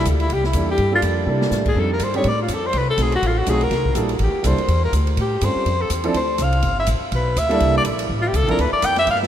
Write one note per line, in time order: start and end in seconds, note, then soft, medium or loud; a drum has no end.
0.05 0.29 D2 medium
0.05 kick soft
0.05 hi-hat pedal medium
0.05 ride medium
0.20 0.34 E4 medium
0.20 ride soft
0.30 0.53 C2 medium
0.30 0.46 G4 medium
0.30 kick soft
0.30 ride medium
0.44 0.68 E4 medium
0.44 snare soft
0.53 0.78 E2 medium
0.53 0.78 G3 soft
0.53 0.79 A#3 soft
0.53 0.79 D4 soft
0.53 0.79 E4 soft
0.53 0.79 A4 soft
0.53 kick soft
0.53 hi-hat pedal medium
0.53 ride medium
0.71 0.92 G4 medium
0.78 1.02 G2 medium
0.78 kick soft
0.78 ride medium
0.91 1.24 G3 medium
0.91 1.25 A#3 medium
0.91 1.25 D4 medium
0.91 1.25 F4 medium
0.91 1.01 F4 medium
0.91 1.25 A4 medium
1.02 1.26 F2 medium
1.02 kick soft
1.02 hi-hat pedal medium
1.02 ride medium
1.26 1.51 C3 medium
1.26 1.62 G3 medium
1.26 1.63 A#3 medium
1.26 1.63 D4 medium
1.26 1.63 E4 medium
1.26 1.63 A4 medium
1.41 snare medium
1.51 1.75 A2 medium
1.51 snare medium
1.51 hi-hat pedal medium
1.66 1.81 G#4 medium
1.66 kick medium
1.66 crash medium
1.75 1.99 F2 medium
1.75 1.88 G3 medium
1.75 1.89 C4 soft
1.75 1.89 D4 soft
1.75 1.89 D#4 medium
1.75 1.90 A4 medium
1.75 kick soft
1.80 1.92 A4 medium
1.93 2.05 A#4 medium
2.00 2.24 G2 medium
2.00 kick soft
2.00 hi-hat pedal medium
2.00 ride medium
2.04 2.16 C5 medium
2.14 2.24 G3 medium
2.14 2.24 C4 medium
2.14 2.24 D4 medium
2.14 2.24 D#4 medium
2.14 2.25 G4 medium
2.14 2.30 C#5 medium
2.14 ride soft
2.24 2.48 A2 medium
2.24 kick soft
2.24 ride medium
2.28 2.41 D5 medium
2.42 2.55 F4 medium
2.48 2.73 F2 medium
2.48 kick soft
2.48 hi-hat pedal medium
2.48 ride medium
2.54 2.68 A4 medium
2.66 2.79 C5 loud
2.73 2.97 C2 medium
2.73 kick soft
2.73 ride medium
2.78 2.89 B4 medium
2.90 3.04 A4 medium
2.97 3.21 B1 medium
2.97 3.11 F#3 soft
2.97 3.11 A3 soft
2.97 3.11 C4 soft
2.97 3.11 D#4 soft
2.97 3.12 G#4 medium
2.97 kick soft
2.97 hi-hat pedal medium
2.97 ride medium
3.02 3.15 G#4 medium
3.12 3.28 F#4 medium
3.12 ride soft
3.22 3.46 A1 medium
3.22 kick soft
3.22 ride medium
3.27 3.40 F4 medium
3.38 3.51 F#4 medium
3.46 3.70 B1 medium
3.46 3.59 F#3 medium
3.46 3.60 A3 medium
3.46 3.60 C4 medium
3.46 3.60 D#4 medium
3.46 3.60 F#4 medium
3.46 3.65 G#4 medium
3.46 kick soft
3.46 hi-hat pedal medium
3.46 ride medium
3.61 3.97 A#4 medium
3.61 ride soft
3.71 3.95 C2 medium
3.71 kick soft
3.71 snare soft
3.71 ride medium
3.85 kick medium
3.94 4.19 A#1 medium
3.94 4.08 G3 medium
3.94 4.08 A#3 medium
3.94 4.09 D4 medium
3.94 4.09 E4 medium
3.94 4.09 A4 medium
3.94 hi-hat pedal medium
3.94 ride medium
4.09 ride soft
4.19 4.33 A1 medium
4.19 4.49 G4 medium
4.19 kick soft
4.19 ride medium
4.43 4.57 C2 medium
4.43 4.56 G3 medium
4.43 4.57 A#3 medium
4.43 4.56 D4 medium
4.43 4.57 E4 medium
4.43 4.57 A4 medium
4.43 kick soft
4.43 hi-hat pedal medium
4.43 ride medium
4.47 4.84 C5 loud
4.58 ride soft
4.68 4.92 E2 medium
4.68 kick soft
4.68 ride medium
4.85 4.93 A#4 medium
4.92 5.16 D2 medium
4.92 kick soft
4.92 hi-hat pedal medium
4.92 ride medium
5.07 ride soft
5.17 5.41 A2 medium
5.17 5.46 G4 medium
5.17 kick soft
5.17 ride medium
5.41 5.55 G2 medium
5.41 5.66 G3 soft
5.41 5.66 C4 soft
5.41 5.66 C#4 soft
5.41 5.67 F4 soft
5.41 5.67 A4 soft
5.41 5.83 C5 loud
5.41 kick soft
5.41 hi-hat pedal medium
5.41 ride medium
5.55 muted upright bass stroke soft
5.65 5.89 F2 medium
5.65 kick soft
5.65 ride medium
5.81 5.91 A4 medium
5.90 6.13 E2 medium
5.90 kick soft
5.90 hi-hat pedal medium
5.90 ride medium
6.04 6.13 F3 medium
6.04 6.14 C4 medium
6.04 6.14 D4 medium
6.04 6.14 E4 medium
6.04 6.14 A4 medium
6.04 ride soft
6.14 6.38 D2 medium
6.14 6.45 C5 medium
6.14 kick soft
6.14 ride medium
6.38 6.62 C2 medium
6.38 kick soft
6.38 hi-hat pedal soft
6.38 ride medium
6.43 6.79 F5 loud
6.53 ride soft
6.62 6.86 G1 medium
6.62 kick soft
6.62 ride medium
6.79 6.88 E5 medium
6.87 7.00 A1 medium
6.87 kick soft
6.87 hi-hat pedal medium
6.87 ride medium
7.00 muted upright bass stroke soft
7.12 7.35 B1 loud
7.12 7.40 B4 medium
7.12 kick soft
7.12 ride medium
7.36 7.60 D2 medium
7.36 7.76 E5 loud
7.36 kick soft
7.36 hi-hat pedal medium
7.36 ride medium
7.49 7.82 G3 medium
7.49 7.83 A#3 medium
7.49 7.83 D4 medium
7.49 7.83 E4 medium
7.49 7.84 A4 medium
7.49 ride soft
7.60 7.84 C2 medium
7.60 kick soft
7.60 ride medium
7.77 7.83 D5 loud
7.84 8.09 A#1 medium
7.84 kick soft
7.84 hi-hat pedal soft
7.84 ride medium
7.99 ride medium
8.09 8.33 A1 medium
8.09 kick soft
8.22 8.30 F4 medium
8.28 8.38 G4 medium
8.33 8.43 C#2 medium
8.33 8.49 A4 loud
8.33 kick soft
8.33 hi-hat pedal medium
8.33 ride medium
8.43 8.50 A1 medium
8.47 8.58 G1 medium
8.47 8.57 F3 medium
8.47 8.57 C4 medium
8.47 8.57 D4 medium
8.47 8.58 E4 medium
8.47 8.58 A4 medium
8.47 8.62 A#4 medium
8.47 ride soft
8.59 8.72 D2 medium
8.59 8.72 B4 medium
8.59 kick soft
8.59 ride medium
8.72 8.87 D5 loud
8.72 muted upright bass stroke soft
8.82 9.06 F2 medium
8.82 8.98 G5 loud
8.82 kick soft
8.82 hi-hat pedal medium
8.82 ride medium
8.96 9.08 E5 loud
8.96 snare soft
8.96 ride soft
9.07 9.27 G2 loud
9.07 9.18 F5 medium
9.07 kick soft
9.07 ride medium
9.15 snare soft
9.23 snare soft